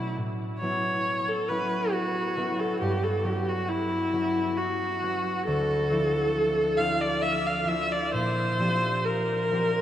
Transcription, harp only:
Already playing: B2 F#3 A3 C#4
0.17 A2
0.62 F#3 B3 C#4 E4
1.49 F#3 B3 C#4 E4
2.37 F#3 B3 C#4 E4
2.81 G2
3.24 F#3 B3 C#4 F#4
4.13 F#3 B3 C#4 F#4
5.02 F#3 B3 C#4 F#4
5.47 D2
5.91 F3 C4 D4 E4
6.78 F3 C4 D4 E4
7.65 F3 C4 E4
7.71 D4
8.13 A#2
8.59 F3 C4 D4 G4
9.51 F3 C4 D4 G4

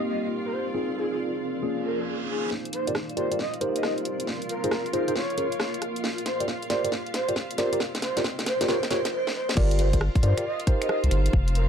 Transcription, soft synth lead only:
0.08 D#5
0.23 D#5
0.45 A#4
0.52 C5
0.97 G#4
1.11 G#4
1.85 A#4
1.99 G#4
2.07 G#4
2.29 G#4
2.73 C5
3.17 C5
3.39 D#5
3.76 D#5
3.83 D#5
4.49 A#4
4.94 A#4
5.08 A#4
5.16 C#5
6.26 C5
6.70 C5
7.14 C5
7.58 C5
8.02 C5
8.47 C5
8.69 C5
8.91 C5
9.13 C5
9.35 C5
9.79 C5
10.23 C5
10.45 D#5
10.82 D#5
10.89 D#5
11.55 A#4

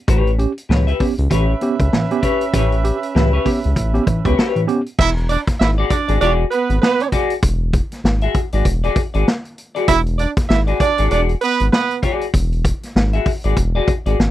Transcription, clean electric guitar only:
0.08 G4 B4 C#5
0.69 G4 B4 C#5
0.87 G4 B4 E5
1.30 G4 B4 C#5
2.22 G4 B4 C#5
2.54 G4 B4 C#5
3.15 G4 B4 E5
3.33 G4 B4 C#5
4.25 G4 B4 C#5
4.37 G4 B4 C#5
5.78 F#4 G#4 D5
6.08 F#4 G#4 D5
6.21 F#4 G#4 D5
7.12 F#4 G#4 D5
8.22 F#4 G#4 E5
8.53 F#4 G#4 D5
8.84 F#4 G#4 D5
9.14 F#4 G#4 D5
9.75 F#4 G#4 D5
10.67 F#4 G#4 D5
10.98 F#4 G#4 D5
11.10 F#4 G#4 D5
12.02 F#4 G#4 D5
13.13 F#4 G#4 E5
13.44 F#4 G#4 D5
13.75 F#4 G#4 D5
14.06 F#4 G#4 D5

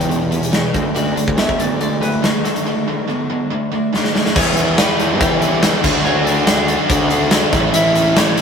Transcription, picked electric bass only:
Already playing: E2
0.74 D2
0.95 D2
1.28 D2
1.49 D2
4.35 E2
5.21 E3
5.84 D2
6.04 D2
6.90 D2
7.53 A1
7.73 A1

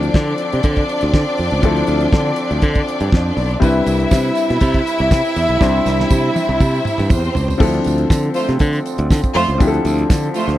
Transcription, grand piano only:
Already playing: F3 C4 D4 E4 A4
1.62 F3 C4 D4 E4 A4
3.60 G3 C4 D4 E4 B4
5.60 G3 C4 D4 E4 C5
7.58 F3 C4 D4 E4 A4
9.58 F3 C4 D4 E4 G4
9.67 A4

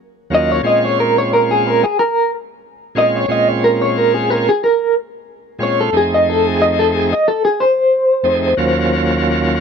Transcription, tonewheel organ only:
0.30 D#2 F#3 A#3 C#4 F4
0.63 A#2 G#3 C4 C#4 F4
2.95 A#2 G#3 C4 C#4 F4
3.28 A#2 G#3 C4 C#4 F4
5.59 A#2 G#3 C4 C#4 F4
5.92 F2 A3 C4 D#4 G#4
8.23 F2 A3 C4 D#4 G#4
8.57 D#2 F#3 A#3 C#4 F4

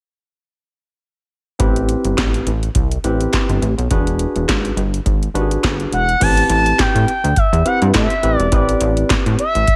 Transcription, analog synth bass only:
1.60 A1
2.05 G1
2.18 A1
2.47 A1
2.75 C2
3.04 A1
3.49 G1
3.62 A1
3.78 B1
3.91 E1
4.36 E1
4.49 G#1
4.77 G1
5.06 G#1
5.34 G#1
5.64 G1
5.92 E1
6.21 A1
6.50 A1
6.79 A2
6.95 A2
7.24 D2
7.53 E2
7.82 G2
7.95 A2
8.23 A1
8.39 E1
8.52 A1
8.81 A1
9.10 A2
9.26 A2
9.55 A1

